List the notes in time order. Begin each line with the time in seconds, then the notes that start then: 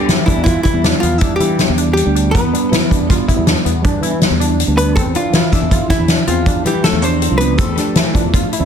Already playing: G3 B3 D4 G4
0.08 E3 E4, snare, closed hi-hat
0.26 E3 G3 B3 D4 E4, kick, closed hi-hat
0.37 E2
0.44 E3 E4 F4, kick, closed hi-hat
0.63 E3 E4, kick, closed hi-hat
0.72 E2 G3 B3 E4
0.84 D4, snare, closed hi-hat
1.00 E2 F3 B3 F4, closed hi-hat
1.18 E3 G3 B3 D4 E4, kick, closed hi-hat
1.23 D4
1.36 E3 G3 G4
1.40 E4, closed hi-hat
1.56 G3 B3 D4, snare, closed hi-hat
1.69 E2
1.78 D4, closed hi-hat
1.93 G3 G4, closed hi-hat
2.04 D2 G3 B3 D4
2.15 D4, closed hi-hat
2.31 E2 B3 B4, kick, closed hi-hat
2.52 G3 B3 D4, closed hi-hat
2.71 E3 E4, snare, closed hi-hat
2.88 G3 B3 D4, kick, closed hi-hat
3.00 E2
3.10 F4, kick, snare, closed hi-hat
3.28 E4, kick, closed hi-hat
3.36 E2 G3 B3 E4
3.47 D4, snare, closed hi-hat
3.65 E2 B3, closed hi-hat
3.82 G3 B3 D4, kick, closed hi-hat
4.01 E3 E4, closed hi-hat
4.19 G3 B3 E4, snare, closed hi-hat
4.30 E2
4.40 D4, closed hi-hat
4.60 closed hi-hat
4.67 D2 G3 B3 D4
4.78 B3 D4 B4, closed hi-hat
4.95 E2 A3 C4 A4, kick, closed hi-hat
5.13 F3 D4 E4 F4, closed hi-hat
5.32 E3 F3 E4 F4, snare, closed hi-hat
5.51 E3 D4 E4, kick, snare, closed hi-hat
5.61 E2
5.71 F4, kick, closed hi-hat
5.88 E3 E4, kick, snare, closed hi-hat
5.97 E2 F3 D4 E4
6.08 D4, snare, closed hi-hat
6.27 E2 F3 C4 F4, closed hi-hat
6.44 F3 D4 E4, kick, closed hi-hat
6.64 E3 G3 E4 G4, closed hi-hat
6.83 F3 A3 D4 E4 A4, snare, closed hi-hat
6.92 E2
7.02 C4 D4 C5, closed hi-hat
7.22 closed hi-hat
7.30 C2 F3 D4 F4
7.38 B3 D4 B4, closed hi-hat
7.58 E2 A3 C4 A4, kick, closed hi-hat
7.75 F3 D4 G4, snare, closed hi-hat
7.95 E3 E4, snare, closed hi-hat
8.12 F3 D4 F4, kick, closed hi-hat
8.23 E2
8.34 F4, kick, closed hi-hat
8.53 E4, closed hi-hat
8.59 E2 F3 D4 E4